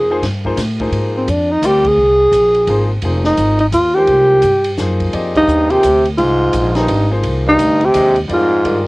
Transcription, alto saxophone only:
Already playing: G#4
1.17 C4
1.30 D4
1.52 D#4
1.66 G4
1.87 G#4
3.26 D#4
3.60 D#4
3.74 F4
3.95 G4
5.37 D#4
5.71 G4
6.18 F4
6.76 D#4
7.49 D#4
7.85 G4
8.33 F4

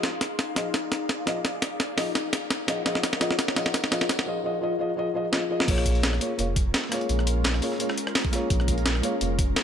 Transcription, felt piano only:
0.55 F3 F4 G#4 D#5
1.26 F3 F4 G#4 D#5
1.96 F3 F4 G#4 D#5
2.67 F3 F4 G#4 D#5
2.85 F3 F4 G#4 D#5
3.20 F3 F4 G#4 D#5
3.55 F3 F4 G#4 D#5
3.91 F3 F4 G#4 D#5
4.26 F3 F4 G#4 D#5
4.43 F3 F4 G#4 D#5
4.61 F3 F4 G#4 D#5
4.79 F3 F4 G#4 D#5
4.96 F3 F4 G#4 D#5
5.14 F3 F4 G#4 D#5
5.32 F3 F4 G#4 D#5
5.49 F3 F4 G#4 D#5
5.66 A#3 F4 G#4
5.71 C#5
6.20 A#3 F4 G#4 C#5
6.37 A#3 F4 G#4 C#5
6.89 A#3 F4 G#4
6.94 C#5
7.61 A#3 F4 G#4 C#5
7.79 A#3 F4 G#4 C#5
8.30 A#3 F4 G#4
8.35 C#5
9.02 A#3 F4 G#4 C#5
9.20 A#3 F4 G#4 C#5

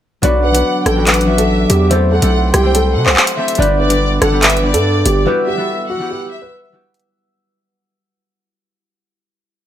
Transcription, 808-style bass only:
0.23 B1
0.86 A1
1.70 E2
2.22 B1
2.54 C2
2.96 C3
3.06 C2
3.59 G1
4.22 G1
4.74 G2
5.06 G1

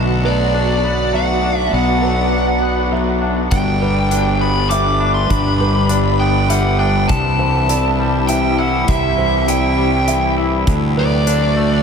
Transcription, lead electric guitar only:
0.26 D5
1.16 F#5
1.58 E5
1.74 F#5
3.51 G5
4.41 B5
4.70 D6
5.14 C6
5.30 B5
6.20 G5
6.50 F#5
6.79 G5
7.09 A5
8.27 G5
8.59 F#5
8.88 E5
9.48 G5
10.99 D5

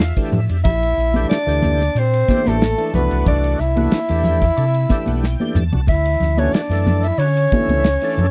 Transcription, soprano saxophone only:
Already playing: F5
0.64 E5
1.30 D5
1.99 C5
2.48 A4
2.95 B4
3.28 D5
3.60 E5
5.89 E5
6.39 C#5
6.53 D5
7.04 E5
7.19 C#5

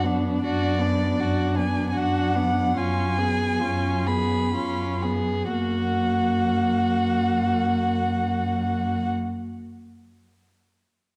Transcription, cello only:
Already playing: F#2
0.44 F#2
1.20 F#2
1.98 F#2
2.78 F#2
3.63 F#2
4.56 F#2
5.54 F#2

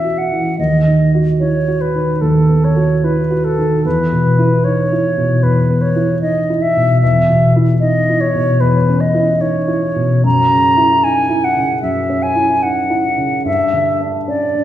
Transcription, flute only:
Already playing: E5
0.18 F#5
0.59 D#5
1.40 C#5
1.81 B4
2.21 A4
2.64 C#5
3.04 B4
3.45 A4
3.85 B4
4.64 C#5
5.43 B4
5.81 C#5
6.22 D#5
6.62 E5
7.01 E5
7.80 D#5
8.21 C#5
8.61 B4
9.00 D#5
9.41 C#5
10.25 A#5
11.04 G#5
11.44 F#5
11.83 E5
12.23 G#5
12.63 F#5
13.46 E5
14.28 D5

